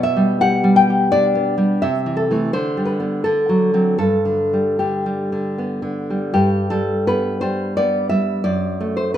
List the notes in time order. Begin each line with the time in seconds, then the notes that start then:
Already playing: B2 B3
0.03 E5
0.17 G3
0.41 G4 F#5
0.64 G3
0.76 G5
0.90 G4
1.12 D4 D5
1.35 B3
1.58 G3
1.82 C3 E5
2.06 E3
2.17 A4
2.31 E3 A3
2.53 D3 C5
2.77 G3
2.85 B4
3.00 G3 B3
3.24 D3 A4
3.49 F#3
3.74 F#3 C4
3.98 G2 A4
4.25 D3
4.53 G3
4.79 D3 G4
5.06 G3
5.32 D3
5.58 B3
5.82 D3
6.10 G3
6.34 G2 G4
6.70 G3 A4
7.07 G3 B3 B4
7.41 G3 C5
7.77 G3 B3 D5
8.09 G3 E5
8.44 F#2 D5
8.81 A3
8.97 C5
9.14 B4